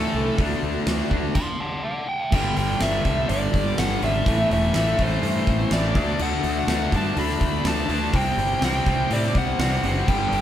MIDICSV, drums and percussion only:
0, 0, Header, 1, 2, 480
1, 0, Start_track
1, 0, Tempo, 484653
1, 381, Time_signature, 4, 2, 24, 8
1, 10312, End_track
2, 0, Start_track
2, 0, Title_t, "Drums"
2, 381, Note_on_c, 9, 36, 109
2, 381, Note_on_c, 9, 46, 54
2, 480, Note_off_c, 9, 36, 0
2, 480, Note_off_c, 9, 46, 0
2, 860, Note_on_c, 9, 38, 111
2, 860, Note_on_c, 9, 46, 52
2, 959, Note_off_c, 9, 38, 0
2, 959, Note_off_c, 9, 46, 0
2, 1101, Note_on_c, 9, 36, 77
2, 1200, Note_off_c, 9, 36, 0
2, 1336, Note_on_c, 9, 49, 97
2, 1340, Note_on_c, 9, 36, 103
2, 1435, Note_off_c, 9, 49, 0
2, 1439, Note_off_c, 9, 36, 0
2, 2300, Note_on_c, 9, 49, 112
2, 2301, Note_on_c, 9, 36, 106
2, 2399, Note_off_c, 9, 49, 0
2, 2400, Note_off_c, 9, 36, 0
2, 2541, Note_on_c, 9, 46, 63
2, 2641, Note_off_c, 9, 46, 0
2, 2779, Note_on_c, 9, 38, 113
2, 2779, Note_on_c, 9, 46, 77
2, 2878, Note_off_c, 9, 38, 0
2, 2878, Note_off_c, 9, 46, 0
2, 3019, Note_on_c, 9, 46, 60
2, 3022, Note_on_c, 9, 36, 77
2, 3118, Note_off_c, 9, 46, 0
2, 3121, Note_off_c, 9, 36, 0
2, 3262, Note_on_c, 9, 46, 83
2, 3361, Note_off_c, 9, 46, 0
2, 3504, Note_on_c, 9, 36, 83
2, 3504, Note_on_c, 9, 46, 65
2, 3603, Note_off_c, 9, 36, 0
2, 3603, Note_off_c, 9, 46, 0
2, 3745, Note_on_c, 9, 38, 109
2, 3745, Note_on_c, 9, 46, 76
2, 3844, Note_off_c, 9, 38, 0
2, 3844, Note_off_c, 9, 46, 0
2, 3985, Note_on_c, 9, 46, 58
2, 4084, Note_off_c, 9, 46, 0
2, 4222, Note_on_c, 9, 36, 102
2, 4222, Note_on_c, 9, 46, 74
2, 4321, Note_off_c, 9, 36, 0
2, 4321, Note_off_c, 9, 46, 0
2, 4468, Note_on_c, 9, 46, 57
2, 4567, Note_off_c, 9, 46, 0
2, 4696, Note_on_c, 9, 38, 110
2, 4696, Note_on_c, 9, 46, 79
2, 4795, Note_off_c, 9, 38, 0
2, 4795, Note_off_c, 9, 46, 0
2, 4939, Note_on_c, 9, 46, 58
2, 4941, Note_on_c, 9, 36, 77
2, 5038, Note_off_c, 9, 46, 0
2, 5040, Note_off_c, 9, 36, 0
2, 5182, Note_on_c, 9, 46, 73
2, 5281, Note_off_c, 9, 46, 0
2, 5419, Note_on_c, 9, 46, 54
2, 5420, Note_on_c, 9, 36, 83
2, 5518, Note_off_c, 9, 46, 0
2, 5519, Note_off_c, 9, 36, 0
2, 5655, Note_on_c, 9, 38, 116
2, 5655, Note_on_c, 9, 46, 73
2, 5755, Note_off_c, 9, 38, 0
2, 5755, Note_off_c, 9, 46, 0
2, 5895, Note_on_c, 9, 36, 109
2, 5895, Note_on_c, 9, 46, 60
2, 5994, Note_off_c, 9, 36, 0
2, 5994, Note_off_c, 9, 46, 0
2, 6133, Note_on_c, 9, 57, 98
2, 6232, Note_off_c, 9, 57, 0
2, 6374, Note_on_c, 9, 46, 58
2, 6473, Note_off_c, 9, 46, 0
2, 6619, Note_on_c, 9, 38, 106
2, 6619, Note_on_c, 9, 46, 77
2, 6718, Note_off_c, 9, 38, 0
2, 6718, Note_off_c, 9, 46, 0
2, 6856, Note_on_c, 9, 46, 60
2, 6857, Note_on_c, 9, 36, 77
2, 6955, Note_off_c, 9, 46, 0
2, 6956, Note_off_c, 9, 36, 0
2, 7099, Note_on_c, 9, 46, 84
2, 7198, Note_off_c, 9, 46, 0
2, 7223, Note_on_c, 9, 38, 32
2, 7322, Note_off_c, 9, 38, 0
2, 7339, Note_on_c, 9, 36, 91
2, 7339, Note_on_c, 9, 46, 61
2, 7438, Note_off_c, 9, 36, 0
2, 7438, Note_off_c, 9, 46, 0
2, 7577, Note_on_c, 9, 38, 105
2, 7577, Note_on_c, 9, 46, 78
2, 7676, Note_off_c, 9, 38, 0
2, 7676, Note_off_c, 9, 46, 0
2, 7818, Note_on_c, 9, 46, 60
2, 7917, Note_off_c, 9, 46, 0
2, 8057, Note_on_c, 9, 36, 106
2, 8058, Note_on_c, 9, 46, 78
2, 8156, Note_off_c, 9, 36, 0
2, 8158, Note_off_c, 9, 46, 0
2, 8304, Note_on_c, 9, 46, 57
2, 8403, Note_off_c, 9, 46, 0
2, 8539, Note_on_c, 9, 38, 107
2, 8539, Note_on_c, 9, 46, 76
2, 8638, Note_off_c, 9, 38, 0
2, 8638, Note_off_c, 9, 46, 0
2, 8778, Note_on_c, 9, 46, 55
2, 8779, Note_on_c, 9, 36, 79
2, 8877, Note_off_c, 9, 46, 0
2, 8879, Note_off_c, 9, 36, 0
2, 9019, Note_on_c, 9, 46, 83
2, 9118, Note_off_c, 9, 46, 0
2, 9142, Note_on_c, 9, 38, 30
2, 9241, Note_off_c, 9, 38, 0
2, 9260, Note_on_c, 9, 46, 56
2, 9261, Note_on_c, 9, 36, 87
2, 9359, Note_off_c, 9, 46, 0
2, 9360, Note_off_c, 9, 36, 0
2, 9504, Note_on_c, 9, 38, 107
2, 9504, Note_on_c, 9, 46, 73
2, 9603, Note_off_c, 9, 38, 0
2, 9603, Note_off_c, 9, 46, 0
2, 9742, Note_on_c, 9, 46, 60
2, 9841, Note_off_c, 9, 46, 0
2, 9984, Note_on_c, 9, 36, 98
2, 9985, Note_on_c, 9, 57, 94
2, 10083, Note_off_c, 9, 36, 0
2, 10084, Note_off_c, 9, 57, 0
2, 10226, Note_on_c, 9, 46, 60
2, 10312, Note_off_c, 9, 46, 0
2, 10312, End_track
0, 0, End_of_file